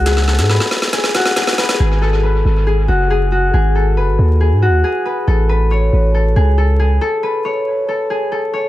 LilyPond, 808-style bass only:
\new Staff \with { instrumentName = "808-style bass" } { \clef bass \time 4/4 \key gis \phrygian \tempo 4 = 138 cis,8. gis,8 r2 r8. | gis,,4. gis,,4 fis,,4. | gis,,4 fis,,16 gis,,16 dis,8. gis,16. dis,16. r4 | a,,4. a,,4 cis,4. |
r1 | }